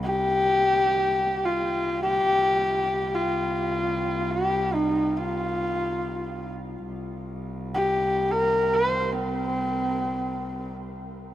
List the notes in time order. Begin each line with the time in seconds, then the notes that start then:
Already playing: C2
0.03 G4
1.45 F4
2.03 G4
2.28 C2
3.15 F4
4.31 G4
4.74 D#4
5.17 F4
6.88 C2
7.74 G4
8.31 A#4
8.73 C5
9.15 C4